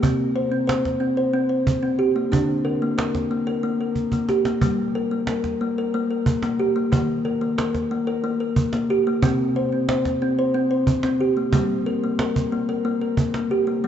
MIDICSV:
0, 0, Header, 1, 3, 480
1, 0, Start_track
1, 0, Key_signature, -2, "minor"
1, 0, Tempo, 657174
1, 26, Time_signature, 7, 3, 24, 8
1, 10134, End_track
2, 0, Start_track
2, 0, Title_t, "Kalimba"
2, 0, Program_c, 0, 108
2, 19, Note_on_c, 0, 48, 71
2, 22, Note_on_c, 0, 60, 70
2, 260, Note_on_c, 0, 72, 68
2, 263, Note_off_c, 0, 60, 0
2, 377, Note_on_c, 0, 60, 62
2, 382, Note_off_c, 0, 72, 0
2, 492, Note_on_c, 0, 72, 72
2, 500, Note_off_c, 0, 60, 0
2, 732, Note_on_c, 0, 60, 67
2, 737, Note_off_c, 0, 72, 0
2, 856, Note_off_c, 0, 60, 0
2, 856, Note_on_c, 0, 72, 72
2, 974, Note_on_c, 0, 60, 76
2, 978, Note_off_c, 0, 72, 0
2, 1090, Note_on_c, 0, 72, 54
2, 1097, Note_off_c, 0, 60, 0
2, 1333, Note_on_c, 0, 60, 66
2, 1335, Note_off_c, 0, 72, 0
2, 1451, Note_on_c, 0, 67, 63
2, 1456, Note_off_c, 0, 60, 0
2, 1575, Note_off_c, 0, 67, 0
2, 1575, Note_on_c, 0, 58, 62
2, 1666, Note_off_c, 0, 48, 0
2, 1692, Note_on_c, 0, 50, 72
2, 1696, Note_on_c, 0, 62, 80
2, 1697, Note_off_c, 0, 58, 0
2, 1933, Note_on_c, 0, 70, 71
2, 1937, Note_off_c, 0, 62, 0
2, 2055, Note_off_c, 0, 70, 0
2, 2060, Note_on_c, 0, 58, 65
2, 2175, Note_on_c, 0, 70, 68
2, 2179, Note_off_c, 0, 58, 0
2, 2416, Note_off_c, 0, 70, 0
2, 2416, Note_on_c, 0, 58, 61
2, 2534, Note_on_c, 0, 70, 68
2, 2536, Note_off_c, 0, 58, 0
2, 2653, Note_on_c, 0, 58, 71
2, 2655, Note_off_c, 0, 70, 0
2, 2775, Note_off_c, 0, 58, 0
2, 2780, Note_on_c, 0, 70, 57
2, 3016, Note_on_c, 0, 58, 63
2, 3018, Note_off_c, 0, 70, 0
2, 3135, Note_on_c, 0, 67, 62
2, 3136, Note_off_c, 0, 58, 0
2, 3255, Note_off_c, 0, 67, 0
2, 3257, Note_on_c, 0, 58, 60
2, 3344, Note_off_c, 0, 50, 0
2, 3366, Note_off_c, 0, 58, 0
2, 3371, Note_on_c, 0, 55, 73
2, 3374, Note_on_c, 0, 58, 78
2, 3615, Note_off_c, 0, 58, 0
2, 3618, Note_on_c, 0, 70, 66
2, 3736, Note_on_c, 0, 58, 57
2, 3737, Note_off_c, 0, 70, 0
2, 3856, Note_off_c, 0, 58, 0
2, 3859, Note_on_c, 0, 70, 69
2, 4097, Note_on_c, 0, 58, 67
2, 4098, Note_off_c, 0, 70, 0
2, 4217, Note_off_c, 0, 58, 0
2, 4223, Note_on_c, 0, 70, 66
2, 4339, Note_on_c, 0, 58, 76
2, 4340, Note_off_c, 0, 70, 0
2, 4458, Note_off_c, 0, 58, 0
2, 4460, Note_on_c, 0, 70, 59
2, 4695, Note_on_c, 0, 58, 69
2, 4698, Note_off_c, 0, 70, 0
2, 4816, Note_off_c, 0, 58, 0
2, 4817, Note_on_c, 0, 67, 62
2, 4936, Note_on_c, 0, 58, 64
2, 4937, Note_off_c, 0, 67, 0
2, 5025, Note_off_c, 0, 55, 0
2, 5044, Note_off_c, 0, 58, 0
2, 5053, Note_on_c, 0, 58, 77
2, 5057, Note_on_c, 0, 51, 78
2, 5295, Note_off_c, 0, 58, 0
2, 5296, Note_on_c, 0, 70, 70
2, 5415, Note_on_c, 0, 58, 63
2, 5416, Note_off_c, 0, 70, 0
2, 5536, Note_off_c, 0, 58, 0
2, 5537, Note_on_c, 0, 70, 75
2, 5777, Note_off_c, 0, 70, 0
2, 5778, Note_on_c, 0, 58, 67
2, 5896, Note_on_c, 0, 70, 76
2, 5898, Note_off_c, 0, 58, 0
2, 6016, Note_on_c, 0, 58, 78
2, 6017, Note_off_c, 0, 70, 0
2, 6137, Note_off_c, 0, 58, 0
2, 6137, Note_on_c, 0, 70, 61
2, 6378, Note_off_c, 0, 70, 0
2, 6379, Note_on_c, 0, 58, 64
2, 6499, Note_off_c, 0, 58, 0
2, 6502, Note_on_c, 0, 67, 69
2, 6620, Note_off_c, 0, 67, 0
2, 6625, Note_on_c, 0, 58, 68
2, 6710, Note_off_c, 0, 51, 0
2, 6738, Note_on_c, 0, 48, 78
2, 6740, Note_on_c, 0, 60, 83
2, 6742, Note_off_c, 0, 58, 0
2, 6980, Note_off_c, 0, 60, 0
2, 6984, Note_on_c, 0, 72, 67
2, 7102, Note_off_c, 0, 72, 0
2, 7103, Note_on_c, 0, 60, 56
2, 7221, Note_off_c, 0, 60, 0
2, 7223, Note_on_c, 0, 72, 74
2, 7462, Note_off_c, 0, 72, 0
2, 7464, Note_on_c, 0, 60, 65
2, 7582, Note_off_c, 0, 60, 0
2, 7586, Note_on_c, 0, 72, 70
2, 7701, Note_on_c, 0, 60, 75
2, 7703, Note_off_c, 0, 72, 0
2, 7821, Note_off_c, 0, 60, 0
2, 7821, Note_on_c, 0, 72, 60
2, 8061, Note_off_c, 0, 72, 0
2, 8063, Note_on_c, 0, 60, 67
2, 8182, Note_off_c, 0, 60, 0
2, 8184, Note_on_c, 0, 67, 60
2, 8303, Note_off_c, 0, 67, 0
2, 8303, Note_on_c, 0, 58, 55
2, 8392, Note_off_c, 0, 48, 0
2, 8417, Note_off_c, 0, 58, 0
2, 8423, Note_on_c, 0, 55, 74
2, 8426, Note_on_c, 0, 58, 75
2, 8664, Note_off_c, 0, 58, 0
2, 8665, Note_on_c, 0, 70, 67
2, 8784, Note_off_c, 0, 70, 0
2, 8791, Note_on_c, 0, 58, 58
2, 8907, Note_off_c, 0, 58, 0
2, 8909, Note_on_c, 0, 70, 72
2, 9146, Note_off_c, 0, 70, 0
2, 9146, Note_on_c, 0, 58, 62
2, 9265, Note_off_c, 0, 58, 0
2, 9267, Note_on_c, 0, 70, 70
2, 9384, Note_on_c, 0, 58, 74
2, 9385, Note_off_c, 0, 70, 0
2, 9504, Note_off_c, 0, 58, 0
2, 9506, Note_on_c, 0, 70, 56
2, 9743, Note_on_c, 0, 58, 61
2, 9745, Note_off_c, 0, 70, 0
2, 9864, Note_off_c, 0, 58, 0
2, 9868, Note_on_c, 0, 67, 62
2, 9985, Note_on_c, 0, 58, 62
2, 9986, Note_off_c, 0, 67, 0
2, 10076, Note_off_c, 0, 55, 0
2, 10099, Note_off_c, 0, 58, 0
2, 10108, Note_on_c, 0, 58, 74
2, 10110, Note_on_c, 0, 55, 68
2, 10134, Note_off_c, 0, 55, 0
2, 10134, Note_off_c, 0, 58, 0
2, 10134, End_track
3, 0, Start_track
3, 0, Title_t, "Cajon"
3, 23, Note_on_c, 9, 36, 56
3, 96, Note_off_c, 9, 36, 0
3, 505, Note_on_c, 9, 38, 59
3, 578, Note_off_c, 9, 38, 0
3, 623, Note_on_c, 9, 36, 41
3, 623, Note_on_c, 9, 38, 17
3, 696, Note_off_c, 9, 36, 0
3, 696, Note_off_c, 9, 38, 0
3, 1218, Note_on_c, 9, 36, 49
3, 1291, Note_off_c, 9, 36, 0
3, 1702, Note_on_c, 9, 36, 49
3, 1775, Note_off_c, 9, 36, 0
3, 1817, Note_on_c, 9, 38, 16
3, 1890, Note_off_c, 9, 38, 0
3, 2180, Note_on_c, 9, 38, 54
3, 2253, Note_off_c, 9, 38, 0
3, 2298, Note_on_c, 9, 36, 41
3, 2298, Note_on_c, 9, 38, 16
3, 2371, Note_off_c, 9, 36, 0
3, 2371, Note_off_c, 9, 38, 0
3, 2422, Note_on_c, 9, 38, 17
3, 2495, Note_off_c, 9, 38, 0
3, 2539, Note_on_c, 9, 38, 16
3, 2612, Note_off_c, 9, 38, 0
3, 2655, Note_on_c, 9, 38, 17
3, 2728, Note_off_c, 9, 38, 0
3, 2889, Note_on_c, 9, 36, 29
3, 2962, Note_off_c, 9, 36, 0
3, 3007, Note_on_c, 9, 36, 34
3, 3080, Note_off_c, 9, 36, 0
3, 3131, Note_on_c, 9, 38, 37
3, 3204, Note_off_c, 9, 38, 0
3, 3252, Note_on_c, 9, 38, 42
3, 3325, Note_off_c, 9, 38, 0
3, 3371, Note_on_c, 9, 36, 46
3, 3444, Note_off_c, 9, 36, 0
3, 3850, Note_on_c, 9, 38, 48
3, 3923, Note_off_c, 9, 38, 0
3, 3973, Note_on_c, 9, 36, 40
3, 3973, Note_on_c, 9, 38, 16
3, 4046, Note_off_c, 9, 36, 0
3, 4046, Note_off_c, 9, 38, 0
3, 4573, Note_on_c, 9, 36, 48
3, 4647, Note_off_c, 9, 36, 0
3, 4693, Note_on_c, 9, 38, 41
3, 4766, Note_off_c, 9, 38, 0
3, 5058, Note_on_c, 9, 36, 50
3, 5131, Note_off_c, 9, 36, 0
3, 5540, Note_on_c, 9, 38, 48
3, 5613, Note_off_c, 9, 38, 0
3, 5657, Note_on_c, 9, 36, 42
3, 5657, Note_on_c, 9, 38, 17
3, 5730, Note_off_c, 9, 36, 0
3, 5730, Note_off_c, 9, 38, 0
3, 6255, Note_on_c, 9, 36, 49
3, 6328, Note_off_c, 9, 36, 0
3, 6374, Note_on_c, 9, 38, 47
3, 6447, Note_off_c, 9, 38, 0
3, 6738, Note_on_c, 9, 36, 56
3, 6811, Note_off_c, 9, 36, 0
3, 7221, Note_on_c, 9, 38, 57
3, 7294, Note_off_c, 9, 38, 0
3, 7343, Note_on_c, 9, 36, 44
3, 7343, Note_on_c, 9, 38, 17
3, 7416, Note_off_c, 9, 36, 0
3, 7416, Note_off_c, 9, 38, 0
3, 7939, Note_on_c, 9, 36, 51
3, 8012, Note_off_c, 9, 36, 0
3, 8057, Note_on_c, 9, 38, 49
3, 8130, Note_off_c, 9, 38, 0
3, 8418, Note_on_c, 9, 36, 55
3, 8491, Note_off_c, 9, 36, 0
3, 8543, Note_on_c, 9, 38, 17
3, 8616, Note_off_c, 9, 38, 0
3, 8903, Note_on_c, 9, 38, 50
3, 8976, Note_off_c, 9, 38, 0
3, 9027, Note_on_c, 9, 36, 43
3, 9100, Note_off_c, 9, 36, 0
3, 9385, Note_on_c, 9, 38, 19
3, 9458, Note_off_c, 9, 38, 0
3, 9504, Note_on_c, 9, 38, 15
3, 9577, Note_off_c, 9, 38, 0
3, 9622, Note_on_c, 9, 36, 47
3, 9695, Note_off_c, 9, 36, 0
3, 9744, Note_on_c, 9, 38, 44
3, 9817, Note_off_c, 9, 38, 0
3, 10134, End_track
0, 0, End_of_file